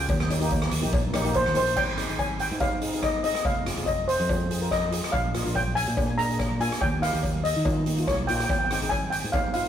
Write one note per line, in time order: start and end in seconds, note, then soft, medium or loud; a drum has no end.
0.00 1.32 G5 medium
0.09 0.68 D#2 loud
0.09 kick loud
0.09 closed hi-hat medium
0.09 cowbell medium
0.20 cross-stick medium
0.28 0.36 A#3 medium
0.28 0.37 D#4 medium
0.28 0.37 G4 medium
0.28 closed hi-hat medium
0.28 cowbell medium
0.40 0.65 A#3 medium
0.40 0.66 D#4 medium
0.40 0.66 G4 medium
0.40 closed hi-hat medium
0.51 kick medium
0.51 closed hi-hat medium
0.51 cowbell medium
0.62 cross-stick medium
0.71 0.83 D#2 medium
0.71 closed hi-hat medium
0.81 1.12 A#1 medium
0.81 1.01 A#3 medium
0.81 1.01 D#4 medium
0.81 1.02 G4 medium
0.81 closed hi-hat medium
0.93 kick loud
0.93 closed hi-hat medium
0.93 cowbell loud
1.12 1.44 A#1 medium
1.12 1.20 A#3 medium
1.12 1.20 D#4 medium
1.12 1.21 G4 medium
1.12 cross-stick medium
1.12 closed hi-hat medium
1.12 cowbell medium
1.24 1.43 A#3 loud
1.24 1.44 D#4 medium
1.24 1.44 G4 loud
1.24 closed hi-hat medium
1.34 1.55 C5 medium
1.34 kick medium
1.34 closed hi-hat medium
1.34 cowbell medium
1.46 1.56 D#2 medium
1.46 cross-stick medium
1.54 1.76 A#1 medium
1.54 1.76 A#3 medium
1.54 1.76 D#4 medium
1.54 1.77 G4 medium
1.54 1.78 C5 medium
1.54 closed hi-hat medium
1.66 closed hi-hat medium
1.77 2.07 G#1 medium
1.77 2.20 G5 medium
1.77 kick medium
1.77 crash medium
1.77 cowbell loud
1.97 2.04 C4 medium
1.97 2.05 D#4 medium
1.97 2.05 G#4 medium
1.97 cross-stick medium
1.97 closed hi-hat medium
2.08 2.48 G#1 medium
2.08 2.39 C4 medium
2.08 2.40 D#4 medium
2.08 2.40 G#4 medium
2.08 closed hi-hat medium
2.19 2.41 G#5 medium
2.19 kick medium
2.19 closed hi-hat medium
2.19 cowbell medium
2.39 2.62 G5 medium
2.39 closed hi-hat medium
2.51 3.31 G#2 medium
2.51 closed hi-hat soft
2.59 2.74 C4 medium
2.59 2.74 D#4 medium
2.59 2.74 G4 medium
2.59 3.04 F5 medium
2.59 kick loud
2.59 closed hi-hat medium
2.59 cowbell medium
2.81 2.88 C4 medium
2.81 2.89 D#4 medium
2.81 2.89 G#4 medium
2.81 closed hi-hat medium
2.93 3.12 C4 medium
2.93 3.12 D#4 medium
2.93 3.13 G#4 medium
2.93 closed hi-hat medium
3.03 3.23 D#5 medium
3.03 kick medium
3.03 cross-stick medium
3.03 closed hi-hat medium
3.03 cowbell medium
3.24 3.45 C4 medium
3.24 3.45 D#4 medium
3.24 3.46 G#4 medium
3.24 3.46 D#5 medium
3.24 closed hi-hat medium
3.35 cross-stick medium
3.35 closed hi-hat medium
3.45 3.75 F1 medium
3.45 3.89 F5 medium
3.45 kick loud
3.45 closed hi-hat medium
3.45 cowbell medium
3.65 3.73 C4 medium
3.65 3.73 F4 medium
3.65 3.73 G#4 medium
3.65 cross-stick medium
3.65 closed hi-hat medium
3.77 4.16 F1 medium
3.77 4.08 C4 medium
3.77 4.08 F4 medium
3.77 4.09 G#4 medium
3.77 closed hi-hat medium
3.86 4.08 D#5 medium
3.86 kick medium
3.86 closed hi-hat medium
3.86 cowbell medium
4.08 4.47 C5 medium
4.08 closed hi-hat medium
4.20 5.00 F2 medium
4.20 closed hi-hat medium
4.29 4.42 C4 medium
4.29 4.42 F4 medium
4.29 4.43 G#4 medium
4.29 kick loud
4.29 closed hi-hat medium
4.29 cowbell medium
4.49 4.56 C4 medium
4.49 4.57 F4 medium
4.49 4.57 G#4 medium
4.49 closed hi-hat medium
4.60 4.80 C4 medium
4.60 4.80 F4 medium
4.60 4.80 A#4 medium
4.60 closed hi-hat medium
4.71 5.15 D#5 medium
4.71 kick medium
4.71 cross-stick medium
4.71 closed hi-hat medium
4.71 cowbell medium
4.91 5.13 C4 medium
4.91 5.13 F4 medium
4.91 5.13 G#4 medium
4.91 closed hi-hat medium
5.04 cross-stick medium
5.04 closed hi-hat medium
5.12 5.43 A#1 medium
5.12 5.56 F5 medium
5.12 kick loud
5.12 closed hi-hat medium
5.12 cowbell medium
5.33 5.40 A#3 medium
5.33 5.41 D4 medium
5.33 5.41 F4 medium
5.33 cross-stick medium
5.33 closed hi-hat medium
5.44 5.84 A#1 medium
5.44 5.76 A#3 medium
5.44 5.76 D4 medium
5.44 5.76 F4 medium
5.44 closed hi-hat medium
5.55 5.65 G5 medium
5.55 kick medium
5.55 closed hi-hat medium
5.55 cowbell medium
5.75 6.19 G#5 loud
5.75 closed hi-hat medium
5.88 6.68 A#2 medium
5.88 closed hi-hat soft
5.96 6.10 A#3 medium
5.96 6.10 D4 medium
5.96 6.11 G4 medium
5.96 kick loud
5.96 closed hi-hat medium
5.96 cowbell medium
6.17 6.24 A#3 medium
6.17 6.25 D4 medium
6.17 6.25 G#4 medium
6.17 6.57 A#5 medium
6.17 closed hi-hat medium
6.29 6.48 A#3 medium
6.29 6.48 D4 medium
6.29 6.49 G#4 medium
6.29 closed hi-hat soft
6.39 kick medium
6.39 cross-stick medium
6.39 closed hi-hat soft
6.39 cowbell medium
6.59 6.81 A#3 medium
6.59 6.81 D4 medium
6.59 6.82 F4 medium
6.59 6.80 G#5 medium
6.59 closed hi-hat medium
6.72 cross-stick medium
6.72 closed hi-hat medium
6.81 7.11 D#2 medium
6.81 7.03 G5 medium
6.81 kick loud
6.81 closed hi-hat medium
6.81 cowbell medium
7.01 7.09 A#3 medium
7.01 7.09 D#4 medium
7.01 7.09 G4 medium
7.01 7.42 F5 medium
7.01 cross-stick medium
7.01 closed hi-hat medium
7.12 7.53 D#2 medium
7.12 7.44 A#3 medium
7.12 7.44 D#4 medium
7.12 7.44 G4 medium
7.12 closed hi-hat medium
7.23 kick medium
7.23 closed hi-hat medium
7.23 cowbell medium
7.44 8.03 D#5 medium
7.44 closed hi-hat medium
7.56 8.04 D#3 medium
7.56 closed hi-hat soft
7.65 7.79 A#3 medium
7.65 7.79 D#4 medium
7.65 7.79 F4 medium
7.65 kick loud
7.65 closed hi-hat medium
7.65 cowbell medium
7.86 7.93 A#3 medium
7.86 7.93 D#4 medium
7.86 7.93 G4 medium
7.86 closed hi-hat medium
7.97 8.17 A#3 medium
7.97 8.17 D#4 medium
7.97 8.17 F4 medium
7.97 closed hi-hat medium
8.07 8.26 C2 medium
8.07 8.29 C#5 medium
8.07 kick medium
8.07 cross-stick medium
8.07 closed hi-hat medium
8.07 cowbell medium
8.27 8.47 A#1 medium
8.27 8.49 A#3 medium
8.27 8.50 D#4 medium
8.27 8.50 F4 medium
8.27 8.34 G5 medium
8.27 closed hi-hat medium
8.36 8.42 G5 medium
8.40 8.50 G5 medium
8.40 cross-stick medium
8.40 closed hi-hat medium
8.49 8.79 G#1 medium
8.49 8.58 G5 medium
8.49 kick loud
8.49 closed hi-hat medium
8.49 cowbell medium
8.59 8.64 G5 medium
8.65 8.71 G5 medium
8.71 8.78 C4 medium
8.71 8.78 D#4 medium
8.71 8.78 G#4 medium
8.71 8.82 G5 medium
8.71 cross-stick medium
8.71 closed hi-hat medium
8.82 9.20 G#1 medium
8.82 9.13 C4 medium
8.82 9.13 D#4 medium
8.82 9.13 G#4 medium
8.82 closed hi-hat medium
8.89 9.12 G#5 medium
8.89 kick medium
8.89 closed hi-hat medium
8.89 cowbell medium
9.10 9.33 G5 medium
9.10 closed hi-hat medium
9.24 9.68 G#2 medium
9.24 closed hi-hat medium
9.32 9.47 C4 medium
9.32 9.47 D#4 medium
9.32 9.48 G4 medium
9.32 9.52 F5 medium
9.32 kick loud
9.32 closed hi-hat medium
9.32 cowbell medium
9.54 9.61 C4 medium
9.54 9.62 D#4 medium
9.54 9.62 F4 medium
9.54 9.63 F5 medium
9.54 closed hi-hat medium
9.65 closed hi-hat medium